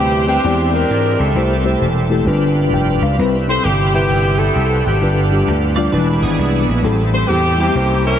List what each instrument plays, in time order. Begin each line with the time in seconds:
Already playing: tine electric piano C3, tonewheel organ G3 C4 E4 B4
0.00 slap bass D2, saxophone section G4
0.27 tine electric piano C4 G4 B4 G5, saxophone section C4 D4 G4
0.43 slap bass E2, tine electric piano E3 G#3 C4 E4 D5, tonewheel organ G3 D4 E4 C5
0.49 tonewheel organ G#3
0.73 saxophone section D4 G4 A#4
0.91 slap bass G#2
1.19 slap bass C#2, saxophone section E4 A4
1.35 slap bass C2, tine electric piano C3 A3 E4 G4 C5, tonewheel organ G3 C4 E4 A4
1.64 tine electric piano A3 E4 G4 C5
1.82 slap bass E1
2.10 tine electric piano A3 E4 G4 A4
2.25 slap bass G1, tine electric piano G2 G3 D4 F4 B4, tonewheel organ G3 D4 F4 B4
2.72 slap bass F1, tine electric piano G5
3.02 slap bass C#2, tine electric piano F5
3.18 slap bass C2, tonewheel organ C3 G3 E4 A#4, tine electric piano C3 G3 C4 E4 B4
3.24 tonewheel organ B4
3.48 tine electric piano G3 C4 E4 A4, saxophone section C5
3.64 slap bass G1, saxophone section G4
3.93 tine electric piano C3 G3 E4 B4, saxophone section B3 E4 G4
4.10 slap bass G1
4.39 saxophone section E4 A4
4.56 slap bass C2
4.86 slap bass G#1, saxophone section B3 D4 G4
5.01 slap bass G1, tine electric piano G2 G3 D4 F4 B4, tonewheel organ G3 D4 F4 B4
5.31 tine electric piano G3 D4 F4 G4
5.48 slap bass D2
5.76 tine electric piano G3 D4 F4 D5, clean electric guitar F4 D5
5.91 slap bass E1, tine electric piano E3 F3 D4 E4 B4, tonewheel organ G#3 D4 E4 B4, clean electric guitar D4 B4
5.97 tine electric piano G#3
6.23 slap bass G#1, clean electric guitar B3 G#4
6.39 slap bass C2
6.68 slap bass A#1
6.83 slap bass A1, tine electric piano A2 G3 C4 E4 A4, tonewheel organ G3 C4 E4 A4
7.13 tine electric piano G3 C4 E4 C5, saxophone section C5
7.28 slap bass E2, saxophone section G4
7.58 tine electric piano G3 C4 E4 G4, saxophone section A#3 E4 G4
7.74 slap bass C2, tine electric piano C3 A#3 C#4 E4 C5, tonewheel organ A#3 C#4 E4 C5
8.07 saxophone section C#4 E4 A#4